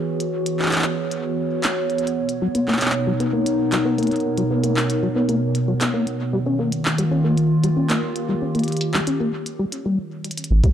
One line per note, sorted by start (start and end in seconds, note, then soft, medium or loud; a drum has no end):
0.00 2.16 E3 medium
0.00 6.33 B3 medium
0.00 3.83 F#4 medium
0.00 3.55 G#4 medium
0.00 9.98 C#5 medium
0.20 closed hi-hat medium
0.46 closed hi-hat medium
0.59 clap medium
0.63 clap medium
0.66 clap medium
0.69 clap medium
0.72 clap medium
0.72 closed hi-hat medium
0.76 clap medium
0.79 clap medium
0.82 clap loud
1.11 closed hi-hat soft
1.64 clap loud
1.64 closed hi-hat medium
1.90 closed hi-hat soft
1.98 closed hi-hat soft
2.07 closed hi-hat soft
2.16 6.33 B2 medium
2.29 closed hi-hat soft
2.42 2.48 F#3 loud
2.42 7.13 D#4 medium
2.55 2.67 B3 loud
2.55 closed hi-hat medium
2.68 2.80 A#3 medium
2.68 clap medium
2.72 clap medium
2.77 7.35 A#4 medium
2.77 clap medium
2.81 clap medium
2.81 closed hi-hat medium
2.85 clap medium
2.90 clap medium
3.07 3.13 F#3 medium
3.20 3.33 B3 loud
3.20 closed hi-hat medium
3.33 3.46 A#3 medium
3.46 closed hi-hat medium
3.72 3.78 F#3 loud
3.72 clap loud
3.72 closed hi-hat medium
3.85 3.98 B3 loud
3.98 4.11 A#3 medium
3.98 closed hi-hat soft
4.03 closed hi-hat soft
4.07 closed hi-hat soft
4.11 closed hi-hat soft
4.16 closed hi-hat soft
4.20 closed hi-hat soft
4.38 4.43 F#3 loud
4.38 closed hi-hat soft
4.51 4.63 B3 loud
4.64 4.76 A#3 medium
4.64 closed hi-hat medium
4.77 clap loud
4.90 closed hi-hat medium
5.03 5.09 F#3 medium
5.16 5.28 B3 loud
5.29 5.41 A#3 medium
5.29 closed hi-hat soft
5.55 closed hi-hat medium
5.68 5.74 F#3 loud
5.81 5.93 B3 loud
5.81 clap loud
5.81 closed hi-hat medium
5.94 6.06 A#3 medium
6.07 closed hi-hat soft
6.33 9.98 D#3 medium
6.33 6.39 G3 loud
6.43 9.98 A#3 medium
6.43 6.59 C#4 loud
6.54 9.98 F4 medium
6.59 6.72 A#3 medium
6.72 closed hi-hat medium
6.85 clap loud
6.98 7.04 G3 loud
6.98 closed hi-hat medium
7.11 7.24 C#4 medium
7.24 7.37 A#3 medium
7.38 closed hi-hat medium
7.64 7.69 G3 medium
7.64 closed hi-hat medium
7.76 7.89 C#4 loud
7.76 9.98 G4 medium
7.90 8.02 A#3 medium
7.90 clap loud
7.90 closed hi-hat medium
8.16 closed hi-hat soft
8.29 8.35 G3 medium
8.42 8.54 C#4 loud
8.55 8.67 A#3 medium
8.55 closed hi-hat soft
8.59 closed hi-hat soft
8.64 closed hi-hat soft
8.68 closed hi-hat soft
8.72 closed hi-hat soft
8.77 closed hi-hat soft
8.81 closed hi-hat medium
8.94 9.00 G3 loud
8.94 clap loud
9.07 9.20 C#4 medium
9.07 closed hi-hat medium
9.20 9.33 A#3 medium
9.46 closed hi-hat medium
9.59 9.65 G3 loud
9.72 closed hi-hat medium
9.85 9.98 G3 medium
10.24 closed hi-hat medium
10.31 closed hi-hat medium
10.38 closed hi-hat medium
10.44 closed hi-hat medium
10.51 10.61 G#1 loud
10.64 10.69 G3 loud
10.64 kick loud
10.64 closed hi-hat medium